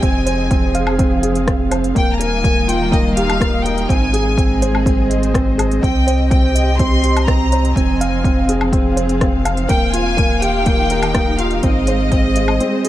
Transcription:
Already playing: string section C4 D#5
0.02 sub bass F1, string section F3, felt piano C4, violin section G#5, kick, closed hi-hat
0.21 string section G#4
0.26 felt piano C5, closed hi-hat
0.51 felt piano C4, kick, closed hi-hat
0.75 felt piano F5, closed hi-hat
0.87 string section F5, low woodblock
0.98 felt piano C4, kick, closed hi-hat
1.23 felt piano G#4, closed hi-hat
1.35 closed hi-hat
1.48 felt piano C4, kick, cross-stick, closed hi-hat
1.71 felt piano C5, closed hi-hat, low woodblock
1.84 closed hi-hat
1.95 sub bass D#1, string section D#3, felt piano A#3, violin section G5, kick, closed hi-hat
2.08 string section G3
2.13 violin section A#5
2.20 felt piano A#4, violin section G#5, closed hi-hat
2.24 string section D#4
2.44 felt piano A#3, kick, closed hi-hat
2.68 felt piano F4, violin section G5, closed hi-hat
2.92 felt piano A#3, violin section D#5, kick, closed hi-hat
3.15 felt piano G4, violin section F5, closed hi-hat
3.30 closed hi-hat, low woodblock
3.40 felt piano A#3, kick, cross-stick, closed hi-hat
3.63 felt piano A#4, violin section G5, closed hi-hat
3.78 closed hi-hat
3.88 sub bass G#1, string section G#3, felt piano C4, violin section G#5, kick, closed hi-hat
4.13 felt piano G#4, closed hi-hat
4.19 string section G#4
4.38 felt piano C4, string section D#5, kick, closed hi-hat
4.61 string section C5, felt piano C5, closed hi-hat
4.75 low woodblock
4.86 felt piano C4, kick, closed hi-hat
5.09 felt piano D#5, closed hi-hat
5.23 closed hi-hat
5.34 felt piano C4, kick, cross-stick, closed hi-hat
5.58 felt piano G#4, closed hi-hat, low woodblock
5.71 closed hi-hat
5.82 sub bass C2, string section C3, felt piano C4, violin section G5, kick, closed hi-hat
6.07 string section G4, felt piano C5, closed hi-hat
6.16 string section C4
6.30 felt piano C4, violin section G5, kick, closed hi-hat
6.55 felt piano D#5, closed hi-hat
6.78 felt piano C4, violin section C6, kick, closed hi-hat
7.04 felt piano G4, closed hi-hat
7.17 closed hi-hat, low woodblock
7.25 felt piano C4, violin section A#5, kick, cross-stick, closed hi-hat
7.52 felt piano C5, closed hi-hat
7.65 closed hi-hat
7.74 sub bass F1, string section F3, felt piano C4, violin section G#5, kick, closed hi-hat
8.01 felt piano F5, closed hi-hat
8.24 felt piano C4, kick, closed hi-hat
8.38 string section F5
8.49 felt piano G#4, closed hi-hat
8.61 string section G#4, low woodblock
8.73 felt piano C4, kick, closed hi-hat
8.97 felt piano C5, closed hi-hat
9.09 closed hi-hat
9.21 felt piano C4, kick, cross-stick, closed hi-hat
9.45 felt piano F5, closed hi-hat, low woodblock
9.57 closed hi-hat
9.69 sub bass D#1, string section D#3, felt piano A#3, violin section G5, kick, closed hi-hat
9.93 felt piano F4, violin section G#5, closed hi-hat
10.11 string section D#4
10.17 felt piano A#3, kick, closed hi-hat
10.41 felt piano G4, violin section G5, closed hi-hat
10.49 string section G4
10.66 felt piano A#3, kick, closed hi-hat
10.90 felt piano A#4, closed hi-hat
11.03 closed hi-hat, low woodblock
11.14 felt piano A#3, kick, cross-stick, closed hi-hat
11.39 felt piano F4, violin section F5, closed hi-hat
11.51 closed hi-hat
11.63 sub bass G#1, string section G#3, felt piano C4, violin section D#5, kick, closed hi-hat
11.74 string section G#4
11.87 felt piano C5, closed hi-hat
12.12 felt piano C4, kick, closed hi-hat
12.19 string section C5
12.36 felt piano D#5, closed hi-hat
12.48 string section D#5, low woodblock
12.60 felt piano C4, closed hi-hat
12.85 felt piano G#4, closed hi-hat

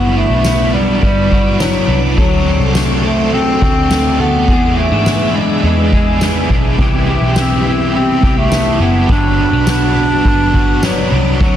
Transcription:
Already playing: picked electric bass G1, overdriven electric guitar G2 D3 F#3 B3 D4 B4, clarinet B3, clean electric guitar B3 F#4, string machine E4 F#5 B5 D6
0.15 overdriven electric guitar F#3 B3 D4 B4, clarinet A3, ride
0.30 picked electric bass B1
0.44 overdriven electric guitar F#3 B3 D4 B4, snare, ride, tambourine
0.73 overdriven electric guitar F#3 B3 D4 B4, clarinet G3, ride
1.02 picked electric bass G1, overdriven electric guitar G2 D3 F#3 B3 D4 B4, clarinet G3, kick, ride
1.31 overdriven electric guitar F#3 B3 D4 B4, clean electric guitar F#4, kick
1.59 overdriven electric guitar F#3 B3 D4 B4, clarinet F#3, snare, tambourine
1.88 picked electric bass C2, overdriven electric guitar F#3 B3 D4 B4, ride
2.17 picked electric bass D2, overdriven electric guitar D3 F#3 C4 D4 A4, clarinet F#3, clean electric guitar F#4, string machine A4 C6 D6, kick
2.45 overdriven electric guitar C4 D4 A4, ride
2.60 picked electric bass C2
2.74 overdriven electric guitar F#3 C4 D4 A4, clean electric guitar A3, snare, ride, tambourine
3.03 clarinet A3, overdriven electric guitar C4 D4 A4, ride
3.32 overdriven electric guitar D3 F#3 C4 D4 A4, clean electric guitar A3, clarinet C4, ride
3.60 picked electric bass D2, overdriven electric guitar C4 D4 A4, clean electric guitar F#4, kick, ride
3.90 overdriven electric guitar F#3 C4 D4 A4, clean electric guitar A3, snare, tambourine
4.19 picked electric bass D2, clarinet B3, overdriven electric guitar C4 D4 A4, ride
4.48 picked electric bass E2, overdriven electric guitar E3 G#3 B3 D4 G#4, string machine G#4 E5 B5, kick
4.76 clarinet A3, overdriven electric guitar B3 D4 G#4, clean electric guitar C4, ride
4.91 picked electric bass G#2, clean electric guitar D4
5.05 overdriven electric guitar G#3 B3 D4 G#4, snare, ride, tambourine
5.33 clarinet G#3, overdriven electric guitar B3 D4 G#4, ride
5.62 picked electric bass E2, overdriven electric guitar E3 G#3 B3 D4 G#4, clarinet G#3, ride
5.92 overdriven electric guitar B3 D4 G#4, kick, ride
6.21 overdriven electric guitar G#3 B3 D4 G#4, snare, tambourine
6.50 picked electric bass B1, overdriven electric guitar B3 D4 G#4, kick
6.78 picked electric bass C2, overdriven electric guitar C3 G3 B3 E4 G4, clean electric guitar E3, string machine G4 B5 C6, kick, ride
7.07 overdriven electric guitar B3 E4 G4, vibraphone D6, ride
7.21 picked electric bass B1
7.35 overdriven electric guitar G3 B3 E4 G4, clarinet C4, snare, ride, tambourine
7.64 overdriven electric guitar B3 E4 G4, clarinet C4, ride
7.93 overdriven electric guitar C3 G3 B3 E4 G4, clarinet C4, ride
8.22 picked electric bass C2, overdriven electric guitar B3 E4 G4, kick
8.38 clarinet A3
8.50 overdriven electric guitar G3 B3 E4 G4, vibraphone A5, snare, tambourine
8.70 vibraphone D6
8.80 picked electric bass F#1, clarinet B3, overdriven electric guitar B3 E4 G4
9.08 picked electric bass G1, overdriven electric guitar G2 D3 F#3 B3 D4 B4, clarinet D4, string machine F#4 F#5 D6, clean electric guitar F#4, kick, ride
9.36 overdriven electric guitar F#3 B3 D4 B4, clean electric guitar C4, ride
9.53 picked electric bass B1, clean electric guitar D4
9.66 overdriven electric guitar F#3 B3 D4 B4, vibraphone F#5, snare, ride, tambourine
9.70 clarinet D4
9.95 overdriven electric guitar F#3 B3 D4 B4, ride
10.24 picked electric bass G1, overdriven electric guitar G2 D3 F#3 B3 D4 B4, kick, ride
10.53 overdriven electric guitar F#3 B3 D4 B4, clean electric guitar F#4, kick, ride
10.82 overdriven electric guitar F#3 B3 D4 B4, clarinet F#3, vibraphone D5, snare, tambourine
11.10 picked electric bass C2, overdriven electric guitar F#3 B3 D4 B4, ride
11.40 picked electric bass D2, overdriven electric guitar D3 F#3 C4 D4 A4, clarinet F#3, clean electric guitar F#4, string machine A4 C6 D6, kick

